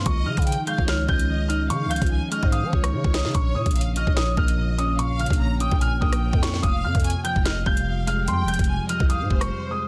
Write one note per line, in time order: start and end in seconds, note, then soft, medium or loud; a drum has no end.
0.00 3.31 D#4 medium
0.05 0.28 C#2 loud
0.05 0.46 D#3 loud
0.05 3.31 F3 medium
0.05 3.31 C#4 medium
0.05 0.44 D#5 loud
0.05 0.23 C#6 loud
0.05 kick loud
0.05 closed hi-hat medium
0.26 0.37 C#3 loud
0.26 1.29 F3 medium
0.26 0.65 F6 medium
0.37 0.57 C#3 loud
0.37 kick medium
0.37 closed hi-hat medium
0.42 closed hi-hat medium
0.46 0.86 D#3 medium
0.46 0.66 G5 medium
0.46 closed hi-hat medium
0.52 closed hi-hat medium
0.67 1.70 G#3 medium
0.67 0.87 F5 medium
0.67 0.84 G6 medium
0.67 closed hi-hat medium
0.78 1.07 C#2 loud
0.78 kick medium
0.87 1.28 D#3 medium
0.87 1.07 C#5 medium
0.87 1.05 F6 medium
0.87 snare loud
0.87 closed hi-hat medium
1.08 1.72 C#2 loud
1.08 2.11 C#4 medium
1.08 1.66 D#5 medium
1.08 1.47 G6 medium
1.08 kick medium
1.19 closed hi-hat medium
1.29 1.69 D#3 medium
1.49 2.52 D#4 medium
1.49 1.66 F6 medium
1.49 closed hi-hat medium
1.70 1.87 C#3 loud
1.70 2.10 D#3 loud
1.70 2.09 F5 loud
1.70 1.87 C#6 loud
1.70 closed hi-hat medium
1.86 2.01 C#2 loud
1.90 2.93 F3 medium
1.90 2.29 G6 medium
1.90 closed hi-hat medium
1.96 closed hi-hat medium
2.02 2.21 C#2 loud
2.02 kick medium
2.02 closed hi-hat medium
2.06 closed hi-hat medium
2.11 2.51 D#3 medium
2.11 2.31 G#5 medium
2.31 3.34 G#3 medium
2.31 2.51 D#5 medium
2.31 2.49 F6 medium
2.31 closed hi-hat medium
2.43 2.65 G#2 loud
2.43 kick loud
2.52 2.92 D#3 medium
2.52 2.72 F5 loud
2.52 2.82 D#6 medium
2.52 closed hi-hat medium
2.63 2.72 F3 loud
2.73 2.95 C#2 loud
2.73 3.34 C#4 medium
2.73 3.31 C#5 medium
2.73 kick medium
2.84 3.12 C#6 medium
2.84 cross-stick loud
2.84 closed hi-hat medium
2.93 3.04 C#3 loud
2.93 3.34 D#3 medium
3.04 3.26 C#2 loud
3.04 kick medium
3.14 3.35 D#4 medium
3.14 3.31 D#6 medium
3.14 snare loud
3.14 closed hi-hat medium
3.25 3.34 C#3 loud
3.25 snare medium
3.34 3.57 A#1 loud
3.34 3.74 A#2 loud
3.34 6.60 A#3 medium
3.34 9.88 F4 medium
3.34 3.73 C#5 loud
3.34 6.60 C#5 medium
3.34 3.52 C#6 loud
3.34 kick loud
3.34 closed hi-hat medium
3.55 3.65 A#2 loud
3.55 4.58 C#3 medium
3.55 3.94 D#6 medium
3.66 4.05 A#1 loud
3.66 kick medium
3.66 closed hi-hat medium
3.71 closed hi-hat medium
3.75 4.16 A#2 medium
3.75 3.95 F5 medium
3.75 closed hi-hat medium
3.81 closed hi-hat medium
3.96 4.99 F3 medium
3.96 4.16 D#5 medium
3.96 4.13 F6 medium
3.96 closed hi-hat medium
4.07 4.36 A#1 loud
4.07 kick medium
4.16 4.57 A#2 medium
4.16 4.36 C#5 medium
4.16 4.34 D#6 medium
4.16 snare loud
4.16 closed hi-hat medium
4.37 5.27 A#1 loud
4.37 5.40 A#3 medium
4.37 4.95 D#5 medium
4.37 4.76 F6 medium
4.37 kick loud
4.48 closed hi-hat medium
4.58 4.98 A#2 medium
4.78 5.81 C#4 loud
4.78 4.95 D#6 medium
4.78 closed hi-hat medium
4.99 5.39 A#2 loud
4.99 5.38 F5 loud
4.99 5.16 C#6 loud
4.99 closed hi-hat medium
5.19 6.22 C#3 medium
5.19 5.58 F6 medium
5.19 closed hi-hat soft
5.26 closed hi-hat medium
5.30 5.70 A#1 loud
5.30 kick medium
5.30 closed hi-hat medium
5.40 5.80 A#2 medium
5.40 5.59 A#5 medium
5.60 6.63 F3 medium
5.60 5.80 G5 medium
5.60 5.78 D#6 medium
5.60 closed hi-hat medium
5.71 6.00 A#1 loud
5.71 kick loud
5.81 6.21 A#2 loud
5.81 6.01 G#5 medium
5.81 5.98 F6 medium
5.81 closed hi-hat medium
6.01 6.32 A#1 loud
6.01 6.63 A#3 medium
6.01 6.60 G5 medium
6.01 6.40 D#6 medium
6.01 kick medium
6.12 cross-stick loud
6.12 closed hi-hat medium
6.22 6.63 A#2 medium
6.33 6.62 F2 loud
6.33 kick medium
6.43 6.63 C#4 medium
6.43 6.60 C#6 medium
6.43 snare loud
6.43 closed hi-hat medium
6.54 snare medium
6.63 6.85 F1 loud
6.63 7.03 F2 medium
6.63 9.88 F3 medium
6.63 9.88 G4 medium
6.63 7.02 F5 loud
6.63 6.80 D#6 loud
6.63 kick loud
6.63 closed hi-hat medium
6.84 6.94 F2 loud
6.84 7.87 C3 medium
6.84 7.23 F6 medium
6.95 7.14 F2 loud
6.95 kick medium
6.95 closed hi-hat medium
7.00 closed hi-hat medium
7.04 7.44 F2 medium
7.04 7.24 G#5 medium
7.04 closed hi-hat medium
7.10 closed hi-hat medium
7.25 8.28 F3 medium
7.25 7.45 G5 loud
7.25 7.42 G6 medium
7.25 closed hi-hat medium
7.36 7.65 F1 loud
7.36 kick loud
7.45 7.85 F2 medium
7.45 7.65 D#5 medium
7.45 7.62 F6 medium
7.45 snare loud
7.45 closed hi-hat medium
7.66 8.29 F1 loud
7.66 8.69 G3 medium
7.66 8.24 F5 medium
7.66 8.05 G6 medium
7.66 kick medium
7.77 closed hi-hat medium
7.87 8.27 F2 medium
8.07 9.10 G#3 medium
8.07 8.24 F6 medium
8.07 closed hi-hat medium
8.27 8.45 F2 loud
8.27 8.68 F2 loud
8.27 8.66 G5 loud
8.27 8.45 C6 medium
8.27 closed hi-hat medium
8.43 8.58 F1 loud
8.48 9.51 C3 medium
8.48 8.87 G6 medium
8.48 closed hi-hat medium
8.54 closed hi-hat medium
8.59 8.79 F1 loud
8.59 kick medium
8.59 closed hi-hat medium
8.64 closed hi-hat medium
8.69 9.09 F2 medium
8.69 8.88 G#5 medium
8.89 9.88 F3 medium
8.89 9.09 D#5 medium
8.89 9.06 F6 medium
8.89 closed hi-hat medium
9.00 9.22 C2 loud
9.00 kick loud
9.10 9.50 F2 medium
9.10 9.29 F5 medium
9.10 9.39 D#6 medium
9.10 closed hi-hat medium
9.21 9.30 G#2 loud
9.30 9.51 F1 loud
9.30 9.88 G3 medium
9.30 9.88 C5 medium
9.30 kick medium
9.41 9.69 C#6 medium
9.41 cross-stick loud
9.41 closed hi-hat medium
9.51 9.88 F2 medium
9.71 9.88 G#3 medium
9.71 9.88 D#6 medium